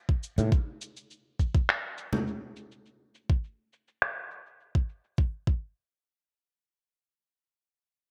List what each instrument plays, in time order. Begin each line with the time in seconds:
0.09 kick
0.23 cabasa
0.38 fretless electric bass A2, high conga, cabasa
0.52 kick, cabasa
0.81 cabasa
0.97 cabasa
1.11 cabasa
1.40 kick, cabasa
1.55 kick, cabasa
1.69 finger snap, cabasa
1.98 cabasa
2.13 high conga, cabasa
2.27 cabasa
2.56 cabasa
2.72 cabasa
2.86 cabasa
3.15 cabasa
3.30 kick, cabasa
3.44 cabasa
3.73 cabasa
3.88 cabasa
4.02 finger snap, cabasa
4.31 cabasa
4.46 cabasa
4.60 cabasa
4.75 kick
4.89 cabasa
5.04 cabasa
5.18 kick
5.47 kick